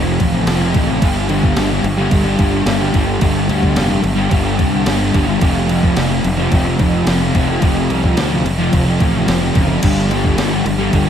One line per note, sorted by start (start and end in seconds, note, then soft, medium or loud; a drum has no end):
0.00 0.18 F1 medium
0.00 0.33 F2 medium
0.05 0.46 C3 medium
0.05 0.48 F3 medium
0.20 0.45 A1 medium
0.20 kick medium
0.20 crash medium
0.46 0.73 F1 loud
0.46 0.73 F2 medium
0.46 0.62 C3 medium
0.46 0.60 F3 loud
0.46 snare loud
0.46 crash medium
0.61 0.74 C3 medium
0.61 0.76 F3 medium
0.74 1.00 A1 medium
0.74 1.00 F2 medium
0.74 0.89 C3 medium
0.74 0.87 F3 medium
0.74 kick medium
0.74 crash medium
0.88 1.01 C3 medium
0.88 1.03 F3 medium
1.00 1.54 G1 medium
1.00 1.28 G2 loud
1.00 1.29 D3 loud
1.00 1.30 G3 loud
1.00 kick loud
1.00 crash medium
1.16 snare soft
1.28 1.56 G2 medium
1.28 1.56 D3 medium
1.28 1.58 G3 medium
1.28 crash medium
1.43 kick medium
1.56 1.82 G1 medium
1.56 1.84 G2 loud
1.56 1.70 D3 loud
1.56 1.68 G3 loud
1.56 snare loud
1.56 crash medium
1.69 1.84 D3 medium
1.69 1.85 G3 medium
1.84 2.10 G1 loud
1.84 muted distorted electric guitar stroke soft
1.84 crash medium
1.97 2.11 D3 medium
1.97 2.12 G3 medium
2.11 2.37 G1 loud
2.11 2.52 G2 medium
2.11 2.26 D3 medium
2.11 2.23 G3 medium
2.11 kick loud
2.11 crash medium
2.24 2.66 D3 medium
2.24 2.67 G3 medium
2.39 2.65 G1 medium
2.39 kick medium
2.39 crash medium
2.66 2.92 G1 loud
2.66 2.92 G2 medium
2.66 2.80 D3 medium
2.66 2.78 G3 loud
2.66 snare loud
2.66 crash medium
2.79 2.93 D3 medium
2.79 2.94 G3 medium
2.93 3.20 G1 medium
2.93 3.19 G2 medium
2.93 3.08 D3 medium
2.93 3.05 G3 medium
2.93 kick medium
2.93 crash medium
3.06 3.21 D3 medium
3.06 3.22 G3 medium
3.21 3.48 G1 loud
3.21 3.46 G2 loud
3.21 3.48 D3 loud
3.21 3.49 G3 loud
3.21 kick loud
3.21 crash medium
3.36 snare soft
3.48 3.75 D2 medium
3.48 3.74 G2 medium
3.48 3.75 D3 medium
3.48 3.76 G3 medium
3.48 crash medium
3.63 kick medium
3.75 4.02 F1 loud
3.75 4.01 G2 medium
3.75 3.90 D3 loud
3.75 3.87 G3 loud
3.75 snare loud
3.75 crash medium
3.89 4.01 D3 medium
3.89 4.02 G3 medium
3.89 snare soft
4.02 4.30 G1 loud
4.02 muted distorted electric guitar stroke soft
4.02 crash medium
4.15 4.29 D3 medium
4.15 4.30 G3 medium
4.29 4.57 G1 loud
4.29 4.72 G2 medium
4.29 4.44 D3 medium
4.29 4.42 G3 loud
4.29 kick loud
4.29 crash medium
4.43 4.85 D3 medium
4.43 4.86 G3 medium
4.59 4.85 C2 loud
4.59 kick medium
4.59 crash medium
4.85 5.13 G1 loud
4.85 5.11 G2 loud
4.85 4.99 D3 loud
4.85 4.97 G3 loud
4.85 snare loud
4.85 crash medium
4.98 5.12 D3 medium
4.98 5.13 G3 medium
5.12 5.40 G1 loud
5.12 5.39 G2 medium
5.12 5.28 D3 medium
5.12 5.25 G3 medium
5.12 kick medium
5.12 crash medium
5.26 5.41 D3 medium
5.26 5.39 G3 medium
5.40 5.94 F1 medium
5.40 5.67 F2 loud
5.40 5.68 C3 loud
5.40 5.70 F3 loud
5.40 kick loud
5.40 crash medium
5.56 snare soft
5.68 5.95 F2 medium
5.68 5.96 C3 medium
5.68 5.98 F3 medium
5.68 crash medium
5.83 kick medium
5.96 6.23 F1 loud
5.96 6.24 F2 loud
5.96 6.10 C3 loud
5.96 6.09 F3 loud
5.96 snare loud
5.96 crash medium
6.09 6.23 C3 medium
6.09 6.24 F3 medium
6.09 snare soft
6.24 6.50 F1 medium
6.24 muted distorted electric guitar stroke soft
6.24 crash medium
6.37 6.51 C3 medium
6.37 6.53 F3 medium
6.51 6.78 F1 medium
6.51 6.93 F2 medium
6.51 6.66 C3 loud
6.51 6.65 F3 medium
6.51 kick loud
6.51 crash medium
6.65 7.06 C3 medium
6.65 7.08 F3 medium
6.79 7.06 F1 medium
6.79 kick medium
6.79 crash medium
7.07 7.33 F1 loud
7.07 7.32 F2 medium
7.07 7.21 C3 loud
7.07 7.20 F3 loud
7.07 snare loud
7.07 crash medium
7.20 7.34 C3 medium
7.20 7.36 F3 medium
7.34 7.61 F1 medium
7.34 7.60 F2 medium
7.34 7.49 C3 medium
7.34 7.47 F3 medium
7.34 kick medium
7.34 crash medium
7.48 7.62 C3 medium
7.48 7.63 F3 medium
7.61 7.88 F1 loud
7.61 7.89 F2 loud
7.61 7.90 C3 loud
7.61 7.91 F3 loud
7.61 kick loud
7.61 crash medium
7.77 snare soft
7.89 8.15 C2 loud
7.89 8.16 F2 medium
7.89 8.17 C3 medium
7.89 8.19 F3 medium
7.89 crash medium
8.04 kick medium
8.16 8.43 D2 medium
8.16 8.44 F2 loud
8.16 8.32 C3 loud
8.16 8.29 F3 loud
8.16 snare loud
8.16 crash medium
8.31 8.44 C3 medium
8.31 8.44 F3 medium
8.31 snare soft
8.44 8.70 F1 medium
8.44 muted distorted electric guitar stroke soft
8.44 crash medium
8.58 8.72 C3 medium
8.58 8.73 F3 medium
8.72 8.99 F1 medium
8.72 9.14 F2 medium
8.72 8.87 C3 medium
8.72 8.84 F3 medium
8.72 kick loud
8.72 crash medium
8.85 9.27 C3 medium
8.85 9.28 F3 medium
9.00 9.26 A1 medium
9.00 kick medium
9.00 crash medium
9.27 9.53 F1 medium
9.27 9.53 F2 medium
9.27 9.42 C3 medium
9.27 9.39 F3 medium
9.27 snare loud
9.27 crash medium
9.41 9.55 C3 medium
9.41 9.56 F3 medium
9.54 9.81 F#1 medium
9.54 9.81 F2 medium
9.54 9.69 C3 medium
9.54 9.67 F3 medium
9.54 kick loud
9.54 crash medium
9.68 9.81 C3 medium
9.68 9.80 F3 medium
9.82 10.34 G1 medium
9.82 10.09 G2 medium
9.82 10.10 D3 loud
9.82 10.11 G3 loud
9.82 kick loud
9.82 crash loud
9.98 snare soft
10.09 10.37 G2 medium
10.09 10.37 D3 medium
10.09 10.39 G3 medium
10.09 crash medium
10.24 kick medium
10.37 10.63 G1 loud
10.37 10.65 G2 loud
10.37 10.52 D3 loud
10.37 10.50 G3 loud
10.37 snare loud
10.37 crash medium
10.50 10.64 D3 medium
10.50 10.65 G3 medium
10.50 snare soft
10.65 10.91 G1 loud
10.65 muted distorted electric guitar stroke soft
10.65 crash medium
10.78 10.92 D3 medium
10.78 10.94 G3 medium
10.92 11.10 G1 loud
10.92 11.10 G2 medium
10.92 11.07 D3 medium
10.92 11.05 G3 medium
10.92 kick loud
10.92 crash medium
11.06 11.10 G3 medium